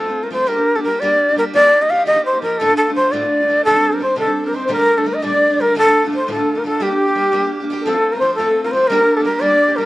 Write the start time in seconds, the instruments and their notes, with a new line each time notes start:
Already playing: shakuhachi A4
0.06 steel-string acoustic guitar A3 C4 F4
0.23 steel-string acoustic guitar A3 C4 F4, shakuhachi A#4
0.30 steel-string acoustic guitar F3 A3 C4 F4, shakuhachi C5
0.46 steel-string acoustic guitar G3 A#3 D4 G4, shakuhachi A#4
0.56 steel-string acoustic guitar A#3 D4 G4
0.75 steel-string acoustic guitar A#3 D4 G4, shakuhachi A4
0.83 steel-string acoustic guitar G3 A#3 D4, shakuhachi A#4
0.88 steel-string acoustic guitar G4
1.00 steel-string acoustic guitar G3 A#3 D4 G4, shakuhachi D5
1.12 steel-string acoustic guitar A#3 D4 G4
1.29 steel-string acoustic guitar A#3 D4 G4
1.36 steel-string acoustic guitar G3 A#3 D4 G4, shakuhachi A#4
1.54 steel-string acoustic guitar D#3 F3 A#3 D#4 G4, shakuhachi D5
1.63 steel-string acoustic guitar A#3 D#4 G4
1.81 steel-string acoustic guitar A#3 D#4 G4, shakuhachi D#5
1.89 steel-string acoustic guitar F3 A#3 D#4 G4, shakuhachi F5
2.05 steel-string acoustic guitar D#3 F3 A#3 D#4 G4, shakuhachi D#5
2.14 steel-string acoustic guitar A#3 D#4 G4
2.26 shakuhachi C5
2.33 steel-string acoustic guitar A#3 D#4 G4
2.42 steel-string acoustic guitar F3 A#3 D#4 G4, shakuhachi A#4
2.58 steel-string acoustic guitar D2 A2 D3 A3 D4 F4, shakuhachi A4
2.69 steel-string acoustic guitar D3 A3 D4 F4
2.77 shakuhachi A4
2.88 steel-string acoustic guitar D3 A3 D4 F4
2.95 steel-string acoustic guitar D3 A3 D4 F4, shakuhachi C5
3.12 steel-string acoustic guitar D2 A2 D3 A3 D4 F4, shakuhachi D5
3.21 steel-string acoustic guitar D3 A3 D4 F4
3.40 steel-string acoustic guitar D3 A3 D4 F4
3.48 steel-string acoustic guitar D3 A3 D4 F4
3.65 steel-string acoustic guitar C3 D#3 G3 C4 D4, shakuhachi A4, accordion A4
3.75 steel-string acoustic guitar G3 C4 D4
3.91 steel-string acoustic guitar G3 C4 D4, shakuhachi A#4, accordion A#4
3.99 steel-string acoustic guitar D#3 G3 C4 D4, accordion C5, shakuhachi C5
4.16 steel-string acoustic guitar C3 D#3 G3 C4 D4, accordion A4, shakuhachi A4
4.24 steel-string acoustic guitar C4 D4, accordion A4
4.29 steel-string acoustic guitar G3, accordion A4
4.44 steel-string acoustic guitar G3 C4 D4, accordion A#4, shakuhachi A#4
4.53 steel-string acoustic guitar D#3 G3 C4 D4, accordion C5, shakuhachi C5
4.66 steel-string acoustic guitar A#2 D3 G3 A3, accordion C5
4.70 steel-string acoustic guitar D4, accordion A#4, shakuhachi A#4
4.78 steel-string acoustic guitar G3 A3 D4
4.97 steel-string acoustic guitar G3 A3 D4, shakuhachi A4, accordion A4 A#4
5.04 steel-string acoustic guitar D3 G3 A3 D4, shakuhachi A#4
5.08 accordion A#4
5.14 shakuhachi D#5, accordion D#5
5.22 steel-string acoustic guitar A#2 D3 G3 A3 D4, shakuhachi D5, accordion D5
5.32 steel-string acoustic guitar G3 A3 D4
5.50 steel-string acoustic guitar G3 A3 D4
5.58 steel-string acoustic guitar D3 G3 A3 D4, accordion A#4, shakuhachi A#4
5.75 steel-string acoustic guitar D2 A2 D3 A3 D4 F4, shakuhachi A4, accordion A4
5.85 steel-string acoustic guitar D3 A3 D4 F4
6.04 steel-string acoustic guitar D3 A3 D4 F4
6.10 steel-string acoustic guitar D3 A3 D4 F4
6.15 shakuhachi C5, accordion C5
6.27 steel-string acoustic guitar D2 A2 D3 A3 D4 F4
6.31 accordion A4, shakuhachi A4
6.36 steel-string acoustic guitar D3 A3 D4 F4
6.55 steel-string acoustic guitar D3 A3 D4 F4, accordion A#4
6.60 shakuhachi A#4
6.64 steel-string acoustic guitar D3 A3 D4 F4, shakuhachi A4, accordion A4
6.80 steel-string acoustic guitar G3 A#3 D4 G4, accordion G4, shakuhachi G4
6.89 steel-string acoustic guitar A#3 D4 G4
7.06 steel-string acoustic guitar A#3 D4 G4
7.15 steel-string acoustic guitar G3 A#3 D4 G4
7.32 steel-string acoustic guitar G3 A#3 D4 G4
7.43 steel-string acoustic guitar A#3 D4 G4
7.60 steel-string acoustic guitar A#3 D4 G4
7.70 steel-string acoustic guitar G3 A#3 D4 G4
7.81 shakuhachi A4 A#4
7.86 steel-string acoustic guitar F3 A3 C4 F4, accordion A4
7.94 steel-string acoustic guitar A3 C4 F4
8.12 steel-string acoustic guitar A3 F4, shakuhachi A#4, accordion A#4
8.16 steel-string acoustic guitar C4, shakuhachi C5
8.21 steel-string acoustic guitar F3 A3 C4, accordion C5
8.25 steel-string acoustic guitar F4
8.35 steel-string acoustic guitar F3, shakuhachi A4, accordion A4
8.39 steel-string acoustic guitar A3 C4 F4
8.47 steel-string acoustic guitar A3 C4 F4
8.64 steel-string acoustic guitar A3 C4 F4, shakuhachi A#4, accordion A#4
8.72 steel-string acoustic guitar F3 C4, shakuhachi C5, accordion C5
8.76 steel-string acoustic guitar A3 F4
8.88 steel-string acoustic guitar G3 A#3 D4, shakuhachi A#4, accordion A#4
8.92 steel-string acoustic guitar G4
8.99 steel-string acoustic guitar A#3 D4 G4
9.17 steel-string acoustic guitar D4 G4, shakuhachi A4, accordion A4
9.21 steel-string acoustic guitar G3 A#3, shakuhachi A#4
9.26 steel-string acoustic guitar A#3 D4 G4, accordion A#4
9.40 steel-string acoustic guitar G3 A#3 D4 G4, shakuhachi D5, accordion D5
9.50 steel-string acoustic guitar A#3 D4 G4
9.68 steel-string acoustic guitar A#3 D4 G4
9.76 steel-string acoustic guitar G3 A#3 D4, shakuhachi A#4, accordion A#4
9.81 steel-string acoustic guitar G4